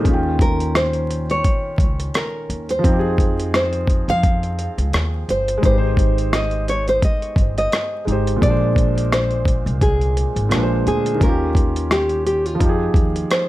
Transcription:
Already playing: G#4
0.00 D#3
0.04 D#2 C#4, kick, closed hi-hat
0.09 F4
0.13 G5
0.39 A#4, kick, closed hi-hat
0.60 closed hi-hat
0.75 C5, cross-stick, closed hi-hat
0.93 closed hi-hat
1.11 closed hi-hat
1.30 C#5, closed hi-hat
1.44 kick, closed hi-hat
1.78 C#2, kick, closed hi-hat
2.00 closed hi-hat
2.14 A#4, cross-stick, closed hi-hat
2.49 D#2, closed hi-hat
2.69 C5, closed hi-hat
2.79 F3
2.83 F2 C4, kick, closed hi-hat
2.88 D#4
2.93 G4
2.99 G#4
3.18 kick, closed hi-hat
3.40 closed hi-hat
3.54 C5, cross-stick, closed hi-hat
3.73 closed hi-hat
3.87 kick, closed hi-hat
4.08 F2 F5, closed hi-hat
4.23 kick, closed hi-hat
4.43 closed hi-hat
4.59 closed hi-hat
4.78 C#2, closed hi-hat
4.93 D#2, cross-stick, closed hi-hat
5.29 G1 C5, closed hi-hat
5.48 closed hi-hat
5.58 G#3
5.62 G#1 D#4 C5, kick, closed hi-hat
5.67 G4
5.71 B4
5.78 C5
5.97 kick, closed hi-hat
6.18 closed hi-hat
6.33 D#5, cross-stick, closed hi-hat
6.51 closed hi-hat
6.68 C#5, closed hi-hat
6.88 C5, closed hi-hat
7.02 D#5, kick, closed hi-hat
7.22 closed hi-hat
7.36 G1, kick, closed hi-hat
7.58 D#5, closed hi-hat
7.72 cross-stick, closed hi-hat
8.05 G#1 G#3 D#4, closed hi-hat
8.10 G4 C5
8.27 closed hi-hat
8.37 A#2
8.41 A#1 G#3 D5, kick, closed hi-hat
8.46 D4
8.50 C5
8.76 kick, closed hi-hat
8.98 closed hi-hat
9.12 C5, cross-stick, closed hi-hat
9.31 closed hi-hat
9.45 kick, closed hi-hat
9.66 C2, closed hi-hat
9.81 G#4, kick, closed hi-hat
10.01 closed hi-hat
10.17 closed hi-hat
10.36 G#1, closed hi-hat
10.49 A#1 A#2 G#3, cross-stick, closed hi-hat
10.54 D4 B4
10.63 C5
10.86 D2 G#4, closed hi-hat
11.06 closed hi-hat
11.15 D#3
11.20 D#2 C#4 A#4, kick, closed hi-hat
11.24 F4
11.29 G4
11.55 kick, closed hi-hat
11.76 closed hi-hat
11.91 G4, cross-stick, closed hi-hat
12.09 closed hi-hat
12.27 G4, closed hi-hat
12.46 F4, closed hi-hat
12.55 F3
12.59 F2 D#4, kick, closed hi-hat
12.64 G4
12.69 G#4
12.94 D#2, kick, closed hi-hat
13.16 closed hi-hat
13.31 C5, cross-stick, closed hi-hat

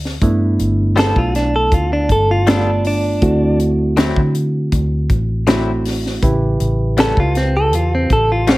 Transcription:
Already playing: D2 A3 B3 D4 F4
0.05 snare
0.22 G2 A3 B3 D4 E4, kick, closed hi-hat
0.59 G1, closed hi-hat
0.96 G3 B3 F4 A4, snare, closed hi-hat
1.16 B1 F4, kick
1.35 D4, snare, closed hi-hat
1.56 A4
1.72 D2 F4, kick, closed hi-hat
1.93 D4
2.09 G1 A4, kick, closed hi-hat
2.31 F4
2.47 G3 A3 B3 D4 F4 A4, snare, closed hi-hat
2.84 D4, open hi-hat
3.22 D2 A3 C4 E4 F#4, kick, closed hi-hat
3.60 closed hi-hat
3.97 D3 F#3 C4 E4, snare, closed hi-hat
4.16 D3, kick
4.35 closed hi-hat
4.72 D2, kick, closed hi-hat
5.09 A1, kick, closed hi-hat
5.47 D3 F#3 A3 C4 E4 F#4, snare, closed hi-hat
5.85 snare, open hi-hat
6.06 snare
6.22 A1 C#3 E4 G4 B4, kick, closed hi-hat
6.60 A1, closed hi-hat
6.97 A2 G3 B3 C#4 A4, snare, closed hi-hat
7.17 C#2 F4, kick
7.35 C4, snare, closed hi-hat
7.57 A4
7.73 E2 F4, closed hi-hat
7.95 C4
8.10 A1 A4, kick, closed hi-hat
8.32 F4
8.47 A2 G3 B3 C4 C#4, snare, closed hi-hat

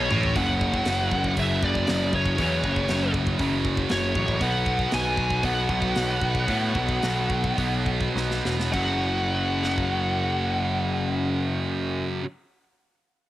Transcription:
Already playing: C#5
0.10 A1 A2, mid tom
0.23 floor tom
0.35 F#1 F#2 C#3 F#3 F#5, kick, open hi-hat
0.61 kick
0.74 kick
0.85 F#1, snare, open hi-hat
1.11 F#1, kick
1.24 kick
1.37 F#1 F#2 C#3 F#3 E5, kick, open hi-hat
1.62 F#1 D5, kick
1.75 kick
1.87 F#1, snare, open hi-hat
2.13 F#1 C#5, kick
2.26 kick
2.38 E2 F#2 C#3 F#3, kick, open hi-hat
2.64 F#1, kick
2.76 kick
2.88 F#1, snare, open hi-hat
3.14 kick
3.27 kick
3.39 F#1 F#2 C#3 F#3, kick, open hi-hat
3.65 kick
3.77 kick
3.89 F#1 C#5, snare, open hi-hat
4.15 A1, kick
4.28 kick
4.40 B1 B2 F#3 B3 F#5, kick, open hi-hat
4.66 kick
4.79 kick
4.92 B1 G#5, snare, open hi-hat
5.17 B1, kick
5.30 kick
5.43 B1 B2 F#3 B3 F#5, kick, open hi-hat
5.69 B1, kick
5.82 kick
5.95 B1, snare, open hi-hat
6.22 B1, kick
6.35 kick
6.47 A2 B2 F#3 B3, kick, open hi-hat
6.75 B1, kick
6.89 kick
7.03 B1, snare, open hi-hat
7.30 kick
7.44 kick
7.56 B1 B2 F#3 B3, kick, open hi-hat
7.86 kick
8.00 kick
8.15 B1, snare
8.31 snare
8.45 E1, snare
8.60 snare
8.72 F#1 F#2 C#3 F#3 F#5, kick, crash
9.64 snare
9.78 kick

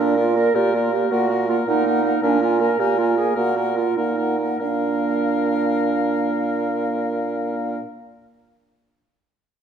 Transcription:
Already playing: A#3 D4 A#4
0.00 A#2 D5
0.17 A#3 F4 A#4 D5
0.36 A#3 A#4 D5
0.55 A#2 A#3 G4 A#4 D5
0.74 A#3 F4 A#4 D5
0.92 A#3 G4 A#4 D5
1.10 A#2 A#3 F#4 A#4 F#5
1.30 A#3 A#4 F#5
1.49 A#3 F4 A#4 F#5
1.67 A#2 A#3 D#4 A#4 F#5
1.86 A#3 A#4 F#5
2.04 A#3 A#4 F#5
2.22 A#2 A#3 D4 A#4 G#5
2.41 A#3 F4 A#4 G#5
2.59 A#3 A#4 G#5
2.79 A#2 A#3 G4 A#4 G#5
2.98 A#3 F4 A#4 G#5
3.17 A#3 G#4 A#4 G#5
3.36 A#2 A#3 F#4 A#4 F#5
3.56 A#3 A#4 F#5
3.76 A#3 F4 A#4 F#5
3.96 A#2 A#3 D#4 A#4 F#5
4.18 A#3 A#4 F#5
4.39 A#3 A#4 F#5
4.60 A#2 A#3 D4 A#4 F5

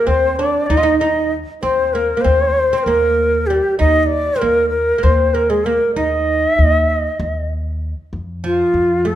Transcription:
0.07 D#2 C4 C5
0.36 D4 D5
0.67 D#2 D#4 D#5
0.77 F4
0.83 D#4
0.99 D#4 D#5
1.62 D#2 C4 C5
1.93 A#3 A#4
2.17 A#3
2.21 C4 C5
2.25 D#2
2.73 C4
2.78 C5
2.84 D#2 A#3 A#4
3.47 G3 G4
3.79 D#2 D#4 D#5
4.03 D5 D#5
4.36 C4 A#4
4.41 D#2 A#3
4.70 A#4
4.98 A#3
5.03 D#2 C4 C5
5.34 A#3 A#4
5.50 G#3 G#4
5.65 A#3 A#4
5.95 D#2 D#4 D#5
6.49 E5
6.58 D#2
6.63 D#5
6.79 E5
6.93 D#5
7.20 D#2
8.13 F2
8.44 F3 F4
8.74 F2
9.05 A3 A4

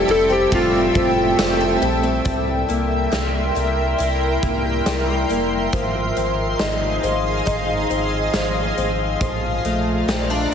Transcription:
Already playing: G3 C4 G4 A4 E5 G5 E6
0.06 F1 E4 G4, ride
0.11 C4 A4
0.30 C4 G4
0.50 F1 G3 A3 C4, kick, ride
0.55 F4 G4
0.95 F1 C4, kick, ride
1.37 F1 A3 C4, snare, ride, tambourine
1.42 G4
1.61 A4
1.82 A#1 E4, ride
2.03 C4
2.25 C2 G3 A#4 E5 G5 C6, kick, closed hi-hat
2.68 C2 A#3, closed hi-hat
3.12 C2 E4, snare, closed hi-hat
3.55 C2 G3, closed hi-hat
3.98 C2 E4, closed hi-hat
4.43 C2 A#3, kick, closed hi-hat
4.86 C2 G3, snare, closed hi-hat
5.29 F1 A#3, closed hi-hat
5.72 G#1 F3 G#4 D#5 F5, kick, closed hi-hat
6.16 G#1 C4, closed hi-hat
6.59 G#1 D#4, snare, closed hi-hat
7.03 G#1 F3, closed hi-hat
7.46 G#1 D#4, kick, closed hi-hat
7.90 G#1 C4, closed hi-hat
8.34 G#1 F3, snare, closed hi-hat
8.77 G#1 C4, closed hi-hat
9.21 A#1 F3 A3 D5 F5 A#5, kick, closed hi-hat
9.65 A#1 A3, closed hi-hat
10.07 A#1 C4, snare, closed hi-hat
10.30 D4

